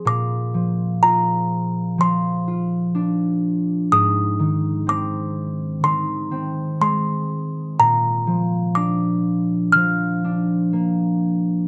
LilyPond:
<<
  \new Staff \with { instrumentName = "Music box" } { \time 4/4 \key bes \mixolydian \tempo 4 = 62 d'''4 bes''4 c'''4. r8 | ees'''4 d'''4 c'''4 c'''4 | bes''4 d'''4 f'''4 r4 | }
  \new Staff \with { instrumentName = "Harp" } { \clef bass \time 4/4 \key bes \mixolydian bes,8 f8 f'4 f8 f'8 d'4 | aes,8 ees8 c'4 ees8 c'8 aes4 | bes,8 f8 d'4 f8 d'8 bes4 | }
>>